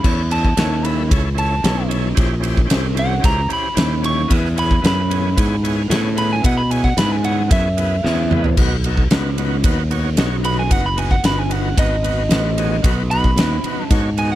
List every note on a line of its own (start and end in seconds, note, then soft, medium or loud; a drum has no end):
0.00 0.22 C#4 medium
0.00 0.23 E4 medium
0.00 0.23 C#5 loud
0.00 0.29 B5 medium
0.04 0.56 E2 medium
0.04 0.23 A4 medium
0.04 kick loud
0.04 crash medium
0.31 0.50 C#4 medium
0.31 0.50 E4 medium
0.31 0.50 A4 medium
0.31 0.50 D#5 medium
0.31 0.85 A5 medium
0.31 ride medium
0.44 kick medium
0.56 1.09 D#2 loud
0.56 0.76 C#4 medium
0.56 0.76 E4 medium
0.56 0.76 A4 medium
0.56 0.76 C#5 medium
0.56 snare loud
0.56 ride medium
0.83 1.03 C#4 medium
0.83 1.02 E4 medium
0.83 1.03 A4 medium
0.83 1.03 E5 medium
0.83 1.37 B5 medium
0.83 ride medium
1.09 1.63 C#2 medium
1.09 1.29 C#4 medium
1.09 1.29 E4 medium
1.09 1.30 A4 medium
1.09 1.30 C#5 loud
1.09 kick loud
1.09 ride loud
1.34 1.55 C#4 medium
1.34 1.55 E4 medium
1.34 1.55 A4 medium
1.34 1.56 C#5 medium
1.34 ride medium
1.39 1.90 A5 medium
1.63 2.16 B1 loud
1.63 1.83 C#4 medium
1.63 1.83 E4 medium
1.63 1.83 A4 medium
1.63 1.84 C#5 medium
1.63 snare loud
1.63 ride medium
1.88 2.09 C#4 medium
1.88 2.09 E4 medium
1.88 2.09 A4 medium
1.88 2.09 C#5 medium
1.88 ride medium
2.15 2.69 A#1 medium
2.15 2.35 C#4 loud
2.15 2.35 E4 medium
2.15 2.35 G4 medium
2.15 2.36 C5 loud
2.15 kick loud
2.15 ride medium
2.40 2.61 C#4 medium
2.40 2.62 E4 medium
2.40 2.62 G4 medium
2.40 2.62 C5 medium
2.40 ride medium
2.57 kick medium
2.65 2.87 C#4 medium
2.65 2.87 E4 medium
2.65 2.88 G4 medium
2.65 2.88 C5 loud
2.70 3.23 C2 loud
2.70 snare loud
2.70 ride loud
2.94 3.15 C#4 medium
2.94 3.15 E4 medium
2.94 3.16 G4 medium
2.94 3.16 C5 medium
2.94 ride medium
2.99 3.24 F#5 loud
3.20 3.41 C#4 loud
3.20 3.42 E4 loud
3.20 3.42 G4 medium
3.20 3.42 C5 loud
3.24 3.49 C#2 medium
3.24 3.51 A#5 loud
3.24 kick loud
3.24 ride loud
3.49 3.69 C#4 medium
3.49 3.69 E4 medium
3.49 3.69 G4 medium
3.49 3.69 C5 medium
3.49 muted fingered electric bass stroke soft
3.49 ride medium
3.53 4.04 B5 medium
3.74 4.29 D#2 loud
3.74 3.95 C#4 medium
3.74 3.95 E4 medium
3.74 3.95 G4 medium
3.74 3.95 C5 medium
3.74 ride medium
3.78 snare loud
4.02 4.22 C#4 medium
4.02 4.23 E4 medium
4.02 4.23 G4 medium
4.02 4.23 C#5 medium
4.02 4.31 C#6 medium
4.02 ride medium
4.28 4.82 E2 medium
4.28 4.49 B3 loud
4.28 4.48 E4 medium
4.28 4.49 G#4 medium
4.28 4.49 B4 loud
4.28 kick loud
4.28 ride medium
4.45 snare soft
4.56 4.76 B3 medium
4.56 4.76 E4 medium
4.56 4.76 G#4 medium
4.56 4.76 C#5 medium
4.56 4.84 B5 loud
4.56 ride medium
4.71 kick medium
4.81 5.36 F#2 medium
4.81 5.01 B3 medium
4.81 5.02 E4 medium
4.81 5.02 G#4 medium
4.81 5.02 B4 medium
4.81 ride medium
4.86 5.89 B5 medium
4.86 snare loud
5.09 5.29 B3 medium
5.09 5.29 E4 medium
5.09 5.30 G#4 medium
5.09 5.30 C#5 medium
5.09 ride medium
5.36 5.89 G#2 medium
5.36 5.56 B3 loud
5.36 5.56 E4 medium
5.36 5.56 G#4 medium
5.36 5.57 C#5 loud
5.36 kick loud
5.36 ride loud
5.63 5.82 B3 medium
5.63 5.83 E4 medium
5.63 5.83 G#4 medium
5.63 5.83 C#5 medium
5.63 ride medium
5.88 6.42 A2 loud
5.88 6.08 B3 medium
5.88 6.09 E4 medium
5.88 6.09 G#4 medium
5.88 6.09 C#5 loud
5.88 ride loud
5.92 snare loud
6.15 6.35 B3 medium
6.15 6.36 E4 medium
6.15 6.36 G#4 medium
6.15 6.36 B4 medium
6.15 6.31 B5 loud
6.15 ride medium
6.33 6.45 G#5 medium
6.42 6.96 B2 medium
6.42 6.62 B3 medium
6.42 6.62 E4 medium
6.42 6.63 G#4 medium
6.42 6.63 B4 medium
6.42 kick loud
6.42 ride loud
6.46 6.58 F#5 medium
6.57 6.71 B5 loud
6.70 6.89 B3 medium
6.70 6.90 E4 medium
6.70 6.90 G#4 medium
6.70 6.90 C#5 medium
6.70 6.84 G#5 loud
6.70 ride medium
6.84 6.97 F#5 medium
6.84 kick medium
6.97 7.49 G#2 medium
6.97 7.16 B3 medium
6.97 7.17 E4 medium
6.97 7.17 G#4 medium
6.97 7.17 B4 medium
6.97 7.12 B5 medium
6.97 snare loud
6.97 ride loud
7.12 7.24 G#5 loud
7.22 7.42 B3 medium
7.22 7.43 E4 medium
7.22 7.43 G#4 medium
7.22 7.43 C#5 medium
7.22 7.50 F#5 medium
7.22 ride medium
7.48 8.03 F#2 medium
7.48 7.68 B3 loud
7.48 7.69 E4 medium
7.48 7.69 G#4 medium
7.48 7.70 C#5 loud
7.48 8.55 E5 loud
7.48 kick loud
7.48 ride loud
7.77 7.96 B3 medium
7.77 7.96 E4 medium
7.77 7.96 G#4 medium
7.77 7.97 B4 medium
7.77 ride medium
8.03 8.56 E2 loud
8.03 8.22 B3 medium
8.03 8.23 E4 medium
8.03 8.23 G#4 medium
8.03 8.23 C#5 medium
8.03 snare medium
8.30 8.49 B3 medium
8.30 8.50 E4 medium
8.30 8.50 G#4 medium
8.30 8.50 B4 loud
8.30 mid tom medium
8.44 floor tom medium
8.57 9.09 B1 medium
8.57 8.77 B3 loud
8.57 8.77 D#4 loud
8.57 8.77 F#4 loud
8.57 8.77 B4 loud
8.57 kick loud
8.57 crash loud
8.84 9.04 B3 medium
8.84 9.04 D#4 medium
8.84 9.04 F#4 medium
8.84 9.05 A4 medium
8.84 ride medium
8.97 kick medium
9.11 9.62 C#2 loud
9.11 9.30 B3 medium
9.11 9.30 D#4 medium
9.11 9.30 F#4 medium
9.11 9.31 B4 loud
9.11 snare loud
9.11 ride medium
9.38 9.57 B3 medium
9.38 9.57 D#4 medium
9.38 9.57 F#4 medium
9.38 9.57 B4 loud
9.38 ride medium
9.64 10.16 D#2 medium
9.64 9.83 B3 loud
9.64 9.83 D#4 loud
9.64 9.84 F#4 loud
9.64 9.84 B4 loud
9.64 kick loud
9.64 ride loud
9.90 10.09 B3 medium
9.90 10.10 D#4 medium
9.90 10.10 F#4 medium
9.90 10.10 C#5 loud
9.90 ride medium
10.17 10.69 B1 loud
10.17 10.36 B3 medium
10.17 10.37 D#4 medium
10.17 10.37 F#4 medium
10.17 10.37 C#5 loud
10.17 snare loud
10.17 ride medium
10.43 10.62 B3 medium
10.43 10.62 D#4 medium
10.43 10.63 F#4 medium
10.43 10.63 B4 medium
10.43 10.58 B5 loud
10.43 ride medium
10.59 10.71 G#5 medium
10.69 11.22 F#1 medium
10.69 10.89 B3 medium
10.69 10.89 D#4 medium
10.69 10.89 F#4 medium
10.69 10.90 B4 medium
10.69 10.84 F#5 medium
10.69 kick loud
10.69 ride loud
10.86 10.99 B5 medium
10.96 11.16 B3 medium
10.96 11.16 D#4 medium
10.96 11.16 F#4 medium
10.96 11.17 B4 medium
10.96 11.11 G#5 loud
10.96 ride medium
11.11 11.24 F#5 medium
11.11 kick medium
11.23 11.76 G1 loud
11.23 11.43 B3 medium
11.23 11.43 D#4 medium
11.23 11.43 F#4 medium
11.23 11.43 B4 medium
11.23 11.39 B5 medium
11.23 snare loud
11.23 ride loud
11.39 11.52 G#5 medium
11.49 11.69 B3 medium
11.49 11.69 D#4 medium
11.49 11.70 F#4 medium
11.49 11.70 B4 medium
11.49 11.77 F#5 medium
11.49 ride medium
11.77 12.29 G#1 medium
11.77 11.96 B3 loud
11.77 11.96 D#4 loud
11.77 11.97 F#4 loud
11.77 11.97 B4 loud
11.77 12.82 D#5 loud
11.77 kick loud
11.77 ride loud
12.03 12.22 B3 medium
12.03 12.23 D#4 medium
12.03 12.23 F#4 medium
12.03 12.23 B4 medium
12.03 ride medium
12.29 12.82 A1 loud
12.29 12.50 B3 medium
12.29 12.50 D#4 medium
12.29 12.50 F#4 medium
12.29 12.50 B4 medium
12.29 snare loud
12.29 ride loud
12.58 12.76 B3 medium
12.58 12.76 D#4 medium
12.58 12.77 F#4 medium
12.58 12.77 G#4 loud
12.58 ride medium
12.82 13.36 B1 medium
12.82 13.02 B3 loud
12.82 13.02 D#4 loud
12.82 13.03 F#4 loud
12.82 13.03 B4 loud
12.82 kick loud
12.82 ride loud
13.11 13.31 B3 medium
13.11 13.31 D#4 medium
13.11 13.31 F#4 medium
13.11 13.31 B4 medium
13.11 13.84 B5 loud
13.11 ride medium
13.24 kick medium
13.36 13.62 D#2 loud
13.36 13.57 B3 medium
13.36 13.57 D#4 medium
13.36 13.57 F#4 medium
13.36 13.57 B4 medium
13.36 snare loud
13.36 ride loud
13.64 13.84 B3 medium
13.64 13.84 D#4 medium
13.64 13.84 F#4 medium
13.64 13.85 B4 medium
13.64 muted fingered electric bass stroke soft
13.64 ride medium
13.84 14.14 A5 loud
13.91 14.35 G#2 medium
13.91 14.10 B3 loud
13.91 14.10 D#4 loud
13.91 14.10 F#4 loud
13.91 14.10 C#5 loud
13.91 kick loud
13.91 ride loud
14.17 14.35 B3 medium
14.17 14.35 D#4 medium
14.17 14.35 F#4 medium
14.17 14.35 G#4 medium
14.17 14.31 G#5 medium
14.17 ride medium
14.32 14.35 F#5 medium